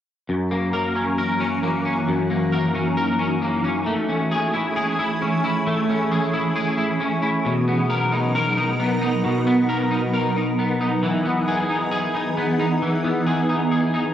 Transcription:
0.29 F#2 E3 A#3 C#4 F#4
0.51 A#3
0.73 A#4
0.96 C#4
1.18 A#4
1.40 C#4
1.63 A#3
1.85 C#4
2.08 F#2 D#4
2.30 A#3
2.52 A#4
2.75 C#4
2.97 A#4
3.19 C#4
3.42 A#3
3.64 C#4
3.86 E3 A3 C#4 G#4
4.09 C#4
4.31 G#4
4.54 E4
4.76 G#4
4.99 E4
5.22 C#4
5.44 E4
5.67 A3
5.89 C#4
6.12 G#4
6.33 E4
6.56 G#4
6.77 E4
7.00 C#4
7.22 E4
7.44 B2 F#3 B3 D#4 A#4
7.68 B3
7.90 A#4
8.12 D#4
8.35 A#4
8.57 D#4
8.80 B3
9.01 D#4
9.24 B2
9.47 B3
9.69 A#4
9.91 D#4
10.14 A#4
10.37 D#4
10.59 B3
10.81 D#4
11.03 E3 B3 G#4
11.25 B3
11.48 G#4
11.69 D#4
11.91 G#4
12.14 D#4
12.37 B3
12.60 D#4
12.82 E3
13.04 B3
13.26 G#4
13.49 D#4
13.71 G#4
13.94 D#4

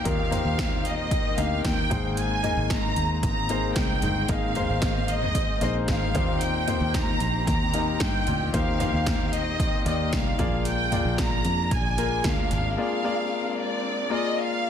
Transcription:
Already playing: D#3 A#3 C4 D#4 G4 A#4 C5
0.04 D#2 A#2 A#3 D#4 G4 A#4 F5, kick, closed hi-hat
0.30 A#3 D#4 G4 C5, closed hi-hat, floor tom
0.45 D#2
0.59 kick, snare, closed hi-hat
0.85 D#5, closed hi-hat
1.11 kick, closed hi-hat
1.37 D2 A#3 D#4 G4 D#5 F5, closed hi-hat
1.64 D#2 G5, kick, snare, closed hi-hat
1.90 G#1 G#2 D#3 G#3 A#3 D#4 G#4 C5, kick, closed hi-hat, floor tom
2.17 G#5, closed hi-hat
2.43 A#3 D#4 G#4 D#5, closed hi-hat, floor tom
2.57 G#1
2.70 A#5, kick, snare, closed hi-hat
2.96 D#2, closed hi-hat
3.23 G#1 A#5, kick, closed hi-hat
3.49 A#3 D#4 G#4 C5, closed hi-hat
3.76 C2 G5, kick, snare, closed hi-hat
4.02 G1 G#2 D#3, closed hi-hat, floor tom
4.29 G#1 A#3 D#4 G#4 D#5 F5, kick, closed hi-hat
4.55 A#3 D#4 G#4 C5, closed hi-hat, floor tom
4.69 G#1
4.82 kick, snare, closed hi-hat
5.08 D#5, closed hi-hat
5.22 floor tom
5.35 kick, closed hi-hat
5.61 A#1 A#3 D#4 G#4 C5 D#5, closed hi-hat
5.88 G#1 F5, kick, snare, closed hi-hat
6.14 D#2 A#2 D#3 A#3 D#4 G4 C5, kick, snare, closed hi-hat, floor tom
6.41 G5, closed hi-hat
6.67 A#3 D#4 G4 C5, closed hi-hat, floor tom
6.81 D#2
6.94 A#5, kick, snare, closed hi-hat
7.20 A#1, closed hi-hat
7.47 D#2 A#5, kick, closed hi-hat
7.74 A#3 D#4 G4 D#5, closed hi-hat
8.00 G2 G5, kick, snare, closed hi-hat
8.27 D2 A#2, closed hi-hat, floor tom
8.53 D#2 A#3 D#4 G4 C5 F5, kick, closed hi-hat
8.79 A#3 D#4 G4 C5, closed hi-hat, floor tom
8.93 D#2
9.06 kick, snare, closed hi-hat
9.32 D#5, closed hi-hat
9.60 kick, closed hi-hat
9.85 D#2 A#3 D#4 G4 D5 D#5, closed hi-hat
10.12 C2 F5, kick, snare, closed hi-hat
10.39 A#1 G#3 A#3 D4 F4 G#4 D5, kick, closed hi-hat, floor tom
10.65 G5, closed hi-hat
10.92 A#3 F4 G#4 D5, closed hi-hat, floor tom
11.05 A#1
11.18 A#5, kick, snare, closed hi-hat
11.45 F2, closed hi-hat
11.71 A#1 G#5, kick, closed hi-hat
11.97 A#3 F4 G#4 A#4, closed hi-hat
12.24 D2 F5, kick, snare, closed hi-hat
12.50 G#1 C4, closed hi-hat, floor tom
12.77 A#3 F4 G#4 D5 F5
13.04 A#3 F4 G#4 D5
13.59 D5
14.10 A#3 F4 G#4 D5 D#5
14.38 F5

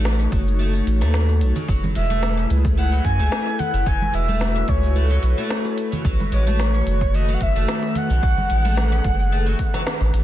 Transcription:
Already playing: A1 A3 D#4 F#4 C#5
0.05 snare, shaker
0.19 C#4, shaker
0.32 F#1, kick, open hi-hat, high conga
0.48 shaker
0.59 A3, shaker
0.73 high bongo, shaker
0.87 A1, open hi-hat
1.01 D#2 A3, snare, high bongo, shaker
1.14 snare, shaker
1.29 high bongo, shaker
1.41 B1, open hi-hat
1.56 C#3, low conga, shaker
1.68 F#1 F#3 E4 G#4 B4, kick, shaker
1.83 high conga, low conga, shaker
1.95 E1 G#3 E5, open hi-hat
2.10 A3, high conga, shaker
2.23 snare, shaker
2.37 C#4, shaker
2.50 C#2, open hi-hat, high conga
2.65 kick, shaker
2.77 A3 F#5, shaker
2.92 F#3, shaker
3.05 F#2 G#5, kick, open hi-hat
3.19 C#2 A3, shaker
3.32 snare, shaker
3.46 high bongo, shaker
3.59 F#5, open hi-hat, low conga
3.74 F#1 C#3, shaker
3.86 F#1 F#3 F#4 G#5, kick, shaker
4.02 high conga, low conga, shaker
4.13 E1 G#3 E5, open hi-hat
4.28 A3, high bongo, high conga, shaker
4.41 snare, shaker
4.56 C#4, shaker
4.68 C#2 C#5, kick, open hi-hat, high conga
4.83 shaker
4.96 A3, shaker
5.10 F#3, high bongo, shaker
5.23 B1, open hi-hat
5.38 A3, high bongo, shaker
5.50 snare, shaker
5.65 high bongo, shaker
5.78 open hi-hat
5.92 C#3, low conga, shaker
6.04 B1 D#3 F#3 F#4, kick, shaker
6.20 high conga, low conga, shaker
6.32 A1 G#3 C#5, open hi-hat
6.47 A3, high conga, shaker
6.60 snare, shaker
6.74 C#4, shaker
6.87 F#1, open hi-hat, high conga
7.01 kick, shaker
7.14 A3 D#5, shaker
7.29 F#3, shaker
7.34 F#5
7.41 F#1 E5, kick, open hi-hat
7.56 F#1 A3, shaker
7.68 snare, shaker
7.83 high bongo, shaker
7.95 F#5, open hi-hat, low conga
8.10 B1 C#3, shaker
8.23 B1 F#3 G#4, kick, shaker
8.37 high conga, low conga, shaker
8.50 A1 G#3, open hi-hat
8.64 A3, high bongo, high conga, shaker
8.77 snare, shaker
8.92 C#4, shaker
9.04 F#1, kick, open hi-hat, high conga
9.20 shaker
9.32 A3, shaker
9.46 F#3, high bongo, shaker
9.59 kick, open hi-hat
9.74 F#3, snare, high bongo, shaker
9.87 snare, shaker
10.01 A1, high bongo, shaker
10.14 A1, open hi-hat

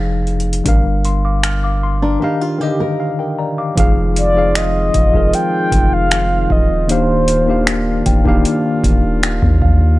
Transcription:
Already playing: F1 F3 D#4 G#4 F5
0.27 closed hi-hat
0.40 closed hi-hat
0.53 closed hi-hat
0.64 G1 G3 D4 A#4, kick, closed hi-hat
0.69 F5
1.05 C6, closed hi-hat
1.25 F5 D6
1.44 F6, finger snap, closed hi-hat
1.64 F5 D6
1.83 C6
2.02 D4 D5 A#5
2.20 D#3 D4 D#4 G4
2.24 F5
2.41 F4
2.59 D3 D#3 G4
2.63 D#5
2.80 A#4
3.00 F5
3.19 A#4 G5
3.39 D5 A#5
3.58 F5 D6
3.75 F1 D#3 F3 G#3 C4 D#4 F4 G#4 F5, kick, closed hi-hat
3.80 F5
4.16 D5, closed hi-hat
4.34 F3 D#4 G#4
4.38 F5
4.55 D#5, finger snap, closed hi-hat
4.94 F1, kick, closed hi-hat
5.12 F3 D#4 G#4, kick
5.17 A#4
5.33 G5, closed hi-hat
5.72 F1, kick, closed hi-hat
5.93 F5
6.11 finger snap, closed hi-hat
6.50 D#1 D#5, kick
6.87 D#3 A#3 D4 F4 G4 C5, closed hi-hat
6.92 F5
7.28 closed hi-hat
7.46 D#3 A#3 D4 G4
7.51 F5
7.67 finger snap, closed hi-hat
8.06 D#1 G5, kick, closed hi-hat
8.24 D#3 A#3 D4 G4, kick
8.28 F5
8.45 closed hi-hat
8.84 D#1, kick, closed hi-hat
9.23 finger snap, closed hi-hat
9.42 D#2, kick
9.62 F5, kick

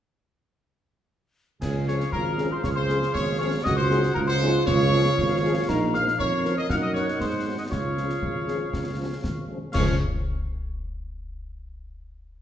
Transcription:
1.61 C#2 C#4 G#4 F5 G#5, concert bass drum, snare, crash
1.87 F3 C#4 G#4 C#5 C#6, snare
2.00 snare
2.12 G#1 F4 A#4 A#5, concert bass drum
2.38 F3 C#4 G#4, snare
2.51 C5 C6
2.63 C#2 G#4 C#5 C#6, concert bass drum, snare
2.76 C5 C6
2.89 F3 C#4 G#4, snare
3.02 snare
3.14 G#1 C#5 C#6, concert bass drum, snare
3.39 F3 C#4 G#4 C#5 C#6
3.64 C#2 F#4 G#4 D#5 F#5 D#6, concert bass drum, snare
3.76 C5 C6
3.91 F#3 D#4 G#4, snare
4.03 snare
4.14 C#2 F4 A#4 A#5, concert bass drum
4.27 C5 C6
4.41 F#3 D#4 G#4, snare
4.66 C#2 C#5 F5 C#6, concert bass drum, snare
4.93 F3 F4 G#4, snare
5.05 snare
5.18 G#1, concert bass drum, snare
5.44 F3 F4 G#4
5.68 A#1 D#4 A#4 A#5, concert bass drum, snare, crash
5.94 F3 F4 A#4 F5 F6, snare
6.08 snare
6.19 F2 C#4 C#5 C#6, concert bass drum
6.45 F3 F4 A#4, snare
6.57 D#5 D#6
6.69 F#2 D#4 F5 F#5 F6, concert bass drum, snare
6.82 D#5 D#6
6.94 F#3 D#4 A#4 C#5 C#6, snare
7.08 snare
7.20 G#2 G#4 C5 C6, concert bass drum, snare
7.47 F#3 D#4 G#4
7.58 D#5 D#6
7.70 C#2 F4 G#4 C#5 F5 C#6, concert bass drum, snare
7.97 F3 C#4 G#4, snare
8.09 snare
8.22 G#1, concert bass drum
8.48 F3 C#4 G#4, snare
8.72 C#2, concert bass drum, snare
8.99 F3 C#4 G#4
9.23 G#1, concert bass drum, snare
9.48 F3 C#4 G#4
9.73 C#2 F3 C#4 G#4 C#5 F5 C#6, concert bass drum, snare, crash

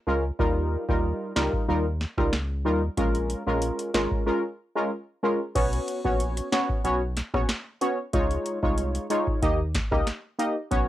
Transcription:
0.07 C#2 G#3 C#4 F4 A#4
0.39 D#2 G3 D#4 F4 A#4, kick
0.89 D#2 G3 D#4 F4 A#4, kick
1.36 C#2 G3 D#4 F4 A#4, snare
1.53 kick
1.68 D#2 G3 D#4 F4 A#4
2.01 snare
2.17 C#2 G3 D#4 F4 A#4, kick, cross-stick
2.33 snare
2.65 D#2 G3 D#4 F4 A#4
2.97 A#1 G#3 C#4 F4 A#4, kick, closed hi-hat
3.15 closed hi-hat
3.30 closed hi-hat
3.47 A#1 G#3 C#4 F4 A#4
3.62 closed hi-hat
3.79 closed hi-hat
3.94 G#1 G#3 C#4 F4 A#4, snare, closed hi-hat
4.11 kick
4.26 G#3 C#4 F4 A#4
4.76 G#3 C#4 F4 A#4
5.23 G#3 C#4 F4 A#4
5.55 B1 B3 C#4 F#4 C#5, kick, closed hi-hat, crash
5.73 closed hi-hat
5.88 closed hi-hat
6.04 A#1 B3 C#4 F#4 C#5, kick
6.20 closed hi-hat
6.37 closed hi-hat
6.52 B3 C#4 F#4 C#5, snare, closed hi-hat
6.69 kick
6.84 B1 B3 C#4 F#4 C#5, closed hi-hat
7.17 snare, closed hi-hat
7.34 A#1 B3 C#4 F#4 C#5, kick, cross-stick
7.49 snare, closed hi-hat
7.81 B3 C#4 F#4 C#5, closed hi-hat
8.13 C#2 G#3 D#4 F4 C#5, kick, closed hi-hat
8.31 closed hi-hat
8.46 closed hi-hat
8.63 C2 G#3 D#4 F4 C#5, kick
8.78 closed hi-hat
8.95 closed hi-hat
9.10 G#3 D#4 F4 C#5, closed hi-hat
9.27 kick
9.42 D#2 A#3 D#4 G4 D#5, kick, closed hi-hat
9.75 kick, snare, closed hi-hat
9.91 C#2 A#3 D#4 G4 D#5, kick, cross-stick
10.07 snare, closed hi-hat
10.39 A#3 D#4 G4 D#5, closed hi-hat
10.71 B1 B3 C#4 F#4 C#5, kick, closed hi-hat

